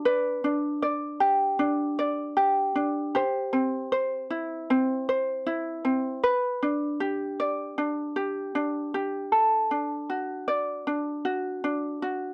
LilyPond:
\new Staff \with { instrumentName = "Ukulele" } { \time 4/4 \key g \major \tempo 4 = 78 <b' d''>8 d'8 d''8 g'8 d'8 d''8 g'8 d'8 | <g' c''>8 c'8 c''8 e'8 c'8 c''8 e'8 c'8 | b'8 d'8 g'8 d''8 d'8 g'8 d'8 g'8 | a'8 d'8 fis'8 d''8 d'8 fis'8 d'8 fis'8 | }